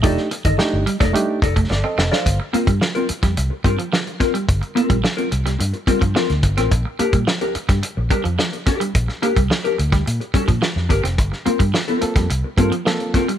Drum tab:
HH |x-xx--xxx-xx----|x-xx-xxxx-xx-xxx|xxxx-xxxxxxx-xxx|x-xx-xxxx-xx-xxx|
SD |-o--o--o----o-oo|----o--o----o-o-|----o--o----oo-o|----o--o----o-o-|
BD |o--o---o--oo----|o--o---o--o---o-|o--o------oo--o-|o--o---o--o---o-|

HH |x-xx-xxxxxxx--xx|x-xx-xxxx-xx-xxx|
SD |-o--o--o----oo-o|-o--o--o----o-o-|
BD |o--o---o--oo--o-|o--o---o--o---o-|